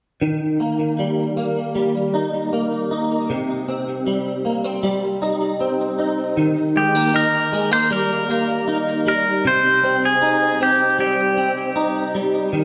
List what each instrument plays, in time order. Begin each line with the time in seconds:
0.21 clean electric guitar D#3
0.60 clean electric guitar A#3
0.99 clean electric guitar G3
1.37 clean electric guitar A#3
1.75 clean electric guitar G3
2.14 clean electric guitar D#4
2.53 clean electric guitar A#3
2.91 clean electric guitar D#4
3.30 clean electric guitar C3
3.68 clean electric guitar C4
4.07 clean electric guitar G3
4.45 clean electric guitar A#3
4.64 clean electric guitar C4
4.83 clean electric guitar G3
5.22 clean electric guitar D#4
5.60 clean electric guitar C4
5.99 clean electric guitar D#4
6.37 clean electric guitar D#3
6.76 clean electric guitar G#3, pedal steel guitar G4
6.95 clean electric guitar A#3
7.14 clean electric guitar D#4, pedal steel guitar A#4
7.53 clean electric guitar G#3
7.71 clean electric guitar A#3, pedal steel guitar C5
7.90 clean electric guitar G3, pedal steel guitar A#4
8.29 clean electric guitar A#3
8.68 clean electric guitar D#4
9.06 clean electric guitar G3, pedal steel guitar A#4
9.45 clean electric guitar C3, pedal steel guitar C5
9.83 clean electric guitar C4
10.05 pedal steel guitar G#4
10.22 clean electric guitar D#4
10.61 clean electric guitar C4, pedal steel guitar G4
10.99 clean electric guitar G3, pedal steel guitar G4
11.37 clean electric guitar C4
11.76 clean electric guitar D#4
12.15 clean electric guitar G3
12.53 clean electric guitar D#3